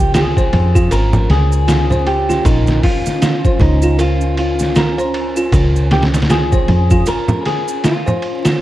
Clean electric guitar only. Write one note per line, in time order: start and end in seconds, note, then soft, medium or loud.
0.00 0.15 G4 medium
0.16 0.88 G#4 medium
0.92 1.28 A#4 loud
1.31 2.03 G#4 loud
2.07 2.43 G4 medium
2.46 2.84 D#4 medium
2.84 3.62 F4 medium
3.62 4.00 D#4 medium
4.01 4.36 F4 medium
4.39 4.74 F4 medium
4.78 5.34 A#4 medium
5.92 6.03 G4 medium
6.31 7.08 G#4 medium
7.08 7.38 A#4 loud
7.41 7.46 A#4 medium
7.46 7.85 G#4 loud
7.85 8.41 F4 medium